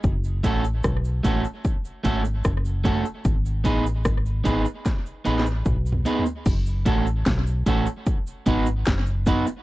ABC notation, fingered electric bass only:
X:1
M:4/4
L:1/16
Q:1/4=75
K:F#dor
V:1 name="Fingered electric bass" clef=bass
F,,,2 A,,,2 B,,,2 A,,, z3 G,,,2 F,,,3 z | G,,,2 A,,,2 G,,,2 G,,, z3 A,,,2 B,,,2 z2 | F,,,2 A,,,2 B,,,2 A,,, z3 G,,,2 F,,,3 z |]